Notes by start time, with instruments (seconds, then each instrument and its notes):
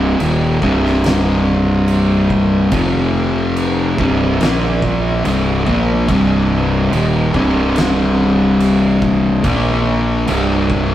Already playing: fingered electric bass C1, distorted electric guitar C2 G2 C3
0.19 fingered electric bass D#1, distorted electric guitar D#2 A#2 D#3, crash
0.62 fingered electric bass C1, distorted electric guitar C2 G2 C3, kick
0.86 snare
1.04 snare, crash
1.88 crash
2.30 kick
2.71 fingered electric bass F1, distorted electric guitar F2 C3 F3, kick, crash
3.56 crash
3.98 fingered electric bass C1, distorted electric guitar C2 G2 C3, kick
4.40 fingered electric bass A#1, distorted electric guitar A#2 F3 A#3, snare, crash
4.82 kick
5.24 fingered electric bass C1, distorted electric guitar C2 G2 C3, crash
5.66 fingered electric bass A#1, distorted electric guitar A#2 F3 A#3, kick
6.08 fingered electric bass C1, distorted electric guitar C2 G2 C3, kick, crash
6.92 fingered electric bass D#1, distorted electric guitar D#2 A#2 D#3, crash
7.34 fingered electric bass C1, distorted electric guitar C2 G2 C3, kick
7.76 snare, crash
8.60 crash
9.02 kick
9.44 fingered electric bass A#1, distorted electric guitar A#2 F3 A#3, kick, crash
10.27 fingered electric bass C1, distorted electric guitar C2 G2 C3, crash
10.70 kick